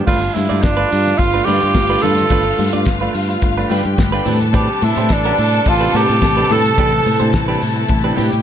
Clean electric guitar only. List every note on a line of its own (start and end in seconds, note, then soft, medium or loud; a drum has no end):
0.07 0.22 A3 medium
0.07 0.21 D4 medium
0.07 0.21 F4 loud
0.07 0.20 B4 medium
0.21 muted clean electric guitar stroke medium
0.35 muted clean electric guitar stroke soft
0.49 0.61 A3 medium
0.49 0.61 D4 medium
0.49 0.60 F4 medium
0.49 0.60 D5 medium
0.77 0.89 A3 medium
0.77 0.90 D4 medium
0.77 0.90 F4 medium
0.77 0.90 B4 loud
0.90 muted clean electric guitar stroke soft
1.06 muted clean electric guitar stroke soft
1.18 muted clean electric guitar stroke soft
1.34 1.45 A3 medium
1.34 1.45 D4 medium
1.34 1.44 F4 medium
1.34 1.44 B4 medium
1.46 1.61 A3 medium
1.46 1.62 D4 medium
1.46 1.62 F4 loud
1.46 1.61 B4 loud
1.75 muted clean electric guitar stroke soft
1.90 2.02 A3 medium
1.90 2.02 D4 medium
1.90 2.03 F4 medium
1.90 2.03 B4 medium
2.03 2.15 A3 medium
2.03 2.15 D4 medium
2.03 2.15 F4 medium
2.03 2.15 B4 medium
2.31 2.46 A3 medium
2.31 2.46 D4 loud
2.31 2.45 F4 medium
2.31 2.44 B4 loud
2.58 muted clean electric guitar stroke soft
2.73 2.84 A3 soft
2.73 2.84 D4 soft
2.73 2.84 F4 medium
2.73 2.84 D5 medium
2.87 muted clean electric guitar stroke soft
3.01 3.14 A3 medium
3.01 3.14 D4 medium
3.01 3.15 F4 medium
3.01 3.15 B4 medium
3.15 muted clean electric guitar stroke medium
3.29 muted clean electric guitar stroke medium
3.43 muted clean electric guitar stroke soft
3.58 3.68 A3 medium
3.58 3.68 D4 medium
3.58 3.68 F4 medium
3.58 3.68 B4 medium
3.70 3.85 A3 medium
3.70 3.85 D4 medium
3.70 3.85 F4 medium
3.70 3.84 B4 medium
3.85 muted clean electric guitar stroke soft
3.97 muted clean electric guitar stroke medium
4.12 4.25 A3 medium
4.12 4.25 D4 medium
4.12 4.27 F4 medium
4.12 4.26 B4 medium
4.25 4.38 C4 medium
4.25 4.38 D4 medium
4.25 4.39 G4 medium
4.25 4.39 B4 medium
4.53 4.69 C4 medium
4.53 4.69 D4 loud
4.53 4.68 G4 loud
4.53 4.68 B4 loud
4.69 muted clean electric guitar stroke soft
4.83 muted clean electric guitar stroke soft
4.97 5.09 C4 soft
4.97 5.08 D4 medium
4.97 5.08 G4 medium
4.97 5.08 C5 medium
5.25 5.38 C4 medium
5.25 5.38 D4 medium
5.25 5.38 G4 medium
5.25 5.39 B4 medium
5.54 muted clean electric guitar stroke soft
5.66 muted clean electric guitar stroke medium
5.80 5.92 C4 medium
5.80 5.92 D4 medium
5.80 5.92 G4 medium
5.80 5.91 B4 medium
5.94 6.15 C4 medium
5.94 6.10 D4 medium
5.94 6.09 G4 medium
5.94 6.08 B4 medium
6.10 muted clean electric guitar stroke medium
6.23 muted clean electric guitar stroke medium
6.37 6.49 C4 medium
6.37 6.50 D4 medium
6.37 6.50 G4 medium
6.37 6.50 B4 medium
6.50 6.62 C4 medium
6.50 6.62 D4 medium
6.50 6.63 G4 medium
6.50 6.63 B4 medium
6.78 6.93 C4 medium
6.78 6.93 D4 medium
6.78 6.93 G4 loud
6.78 6.92 B4 medium
7.06 muted clean electric guitar stroke soft
7.20 7.31 C4 medium
7.20 7.32 D4 medium
7.20 7.31 G4 medium
7.20 7.30 C5 medium
7.48 7.61 C4 medium
7.48 7.62 D4 medium
7.48 7.62 G4 medium
7.48 7.62 B4 medium
7.62 muted clean electric guitar stroke medium
7.76 muted clean electric guitar stroke soft
7.89 muted clean electric guitar stroke soft
8.04 8.14 C4 medium
8.04 8.15 D4 medium
8.04 8.15 G4 medium
8.04 8.15 B4 medium
8.16 8.32 C4 medium
8.16 8.32 D4 medium
8.16 8.31 G4 medium
8.16 8.30 B4 loud
8.32 muted clean electric guitar stroke soft